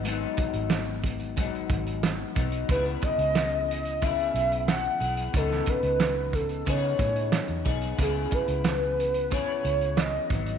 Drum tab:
HH |x-xxx-xxxxxxx-xx|xxxxx-xxxxxxxxxx|x-xxx-xxxxxxxxxx|x-xxx-xxx-xxx-xx|
SD |----o-------o---|----o-------o---|-o--o-------o---|----o-------o---|
BD |--o---o-o-o---o-|o-o-----o-------|o-o---o-o-o---o-|o-o-----o-----o-|